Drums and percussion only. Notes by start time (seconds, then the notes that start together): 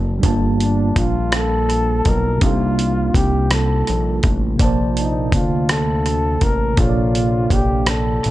0.23 kick, closed hi-hat
0.60 closed hi-hat
0.96 kick, closed hi-hat
1.32 cross-stick, closed hi-hat
1.70 closed hi-hat
2.05 kick, closed hi-hat
2.41 kick, closed hi-hat
2.79 closed hi-hat
3.15 kick, closed hi-hat
3.51 cross-stick, closed hi-hat
3.87 closed hi-hat
4.23 kick, closed hi-hat
4.59 kick, closed hi-hat
4.97 closed hi-hat
5.32 kick, closed hi-hat
5.69 cross-stick, closed hi-hat
6.06 closed hi-hat
6.41 kick, closed hi-hat
6.77 kick, closed hi-hat
7.15 closed hi-hat
7.50 kick, closed hi-hat
7.86 cross-stick, closed hi-hat
8.24 closed hi-hat